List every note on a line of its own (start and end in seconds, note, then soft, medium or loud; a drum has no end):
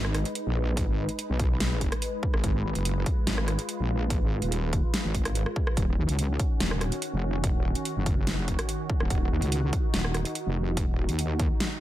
0.00 0.24 G#1 loud
0.00 5.73 G#3 medium
0.00 2.40 D#4 medium
0.00 5.73 B4 medium
0.05 cross-stick medium
0.15 cross-stick medium
0.15 closed hi-hat medium
0.25 closed hi-hat medium
0.35 closed hi-hat medium
0.46 0.86 A#1 loud
0.77 kick loud
0.77 closed hi-hat medium
0.88 1.07 G#1 loud
1.09 closed hi-hat medium
1.19 closed hi-hat medium
1.30 1.90 B1 loud
1.40 kick loud
1.40 closed hi-hat soft
1.60 snare loud
1.60 closed hi-hat medium
1.81 kick medium
1.81 closed hi-hat medium
1.92 cross-stick medium
1.92 closed hi-hat medium
2.02 closed hi-hat medium
2.23 kick loud
2.34 2.42 G#1 loud
2.34 cross-stick medium
2.44 2.63 G#1 loud
2.44 5.74 F4 medium
2.44 kick loud
2.44 closed hi-hat medium
2.65 2.74 G#1 loud
2.75 3.05 F#1 loud
2.75 closed hi-hat medium
2.85 closed hi-hat medium
3.06 kick loud
3.06 closed hi-hat medium
3.27 3.57 G#1 loud
3.27 snare loud
3.27 closed hi-hat medium
3.38 cross-stick medium
3.48 cross-stick medium
3.48 closed hi-hat medium
3.59 closed hi-hat medium
3.69 closed hi-hat medium
3.80 4.19 A#1 loud
4.10 kick loud
4.10 closed hi-hat medium
4.21 4.40 G#1 loud
4.42 4.82 D#1 medium
4.42 closed hi-hat medium
4.52 closed hi-hat medium
4.73 kick loud
4.73 closed hi-hat medium
4.94 snare loud
4.94 closed hi-hat medium
5.05 5.45 G#1 medium
5.15 kick medium
5.15 closed hi-hat medium
5.25 cross-stick medium
5.25 closed hi-hat medium
5.35 closed hi-hat medium
5.46 cross-stick medium
5.56 kick loud
5.67 cross-stick medium
5.77 5.96 D#1 loud
5.77 11.80 D#3 medium
5.77 9.07 C#4 medium
5.77 11.80 F#4 medium
5.77 kick loud
5.77 closed hi-hat medium
5.98 6.07 D#2 loud
6.09 6.38 C#2 loud
6.09 closed hi-hat medium
6.19 closed hi-hat medium
6.40 kick loud
6.40 closed hi-hat medium
6.60 6.90 D#1 loud
6.60 snare loud
6.60 closed hi-hat medium
6.71 cross-stick medium
6.81 cross-stick medium
6.81 closed hi-hat medium
6.92 closed hi-hat medium
7.02 closed hi-hat medium
7.13 7.53 F1 loud
7.44 kick loud
7.44 closed hi-hat medium
7.55 7.74 D#1 loud
7.75 closed hi-hat medium
7.85 closed hi-hat medium
7.96 8.39 F#1 loud
8.06 kick loud
8.06 closed hi-hat medium
8.27 snare loud
8.27 closed hi-hat medium
8.39 8.57 F1 loud
8.48 kick medium
8.48 closed hi-hat medium
8.59 cross-stick medium
8.59 closed hi-hat medium
8.69 closed hi-hat medium
8.90 kick loud
9.00 9.09 D#1 loud
9.00 cross-stick medium
9.10 9.30 D#1 loud
9.10 11.80 D#4 medium
9.10 kick loud
9.10 closed hi-hat medium
9.31 9.40 D#2 loud
9.42 9.71 C#2 loud
9.42 closed hi-hat medium
9.52 closed hi-hat medium
9.73 kick loud
9.73 closed hi-hat medium
9.94 10.24 D#1 loud
9.94 snare loud
9.94 closed hi-hat medium
10.05 cross-stick medium
10.15 cross-stick medium
10.15 closed hi-hat medium
10.25 closed hi-hat medium
10.35 closed hi-hat medium
10.46 10.86 F1 loud
10.77 kick loud
10.77 closed hi-hat medium
10.88 11.07 D#1 loud
11.09 11.49 D#2 loud
11.09 closed hi-hat medium
11.19 closed hi-hat medium
11.40 kick loud
11.40 closed hi-hat medium
11.60 snare loud
11.60 closed hi-hat medium